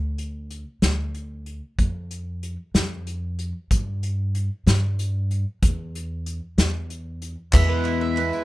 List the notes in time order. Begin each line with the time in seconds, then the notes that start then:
Already playing: D2
0.18 closed hi-hat
0.51 closed hi-hat
0.82 D2, snare, closed hi-hat
1.15 closed hi-hat
1.46 closed hi-hat
1.79 F2, kick, closed hi-hat
2.11 closed hi-hat
2.43 closed hi-hat
2.74 F2, snare, closed hi-hat
3.07 closed hi-hat
3.39 closed hi-hat
3.71 G2, kick, closed hi-hat
4.03 closed hi-hat
4.35 closed hi-hat
4.67 G2, snare, closed hi-hat
4.99 closed hi-hat
5.31 closed hi-hat
5.62 E2, kick, closed hi-hat
5.95 closed hi-hat
6.26 closed hi-hat
6.58 E2, snare, closed hi-hat
6.90 closed hi-hat
7.22 closed hi-hat
7.53 E2 B2 E3 G#3 B3 E4 B4 E5, kick, clap, crash, tambourine
7.69 B4
7.85 E4, clap, ride
8.01 E5
8.17 E3 G#3 B3 E4 B4, clap, ride
8.33 E4, tambourine